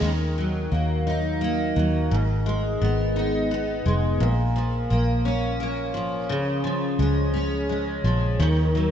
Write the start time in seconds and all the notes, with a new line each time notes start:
0.01 D#2 D#3
0.38 F#3
0.72 D#2 A#3
1.07 D#4
1.41 A#3
1.76 D#2 F#3
2.11 G#1 G#2
2.46 G#3
2.82 G#1 B3
3.16 D#4
3.51 B3
3.86 F1 G#3
4.20 A#1 A#2
4.56 F3
4.90 A#1 A#3
5.25 C#4
5.60 A#3
5.94 G#1 F3
6.29 C#2 C#3
6.64 F3
6.99 C#2 G#3
7.34 C#4
7.69 G#3
8.04 A#1 F3
8.39 D#2 D#3
8.75 F#3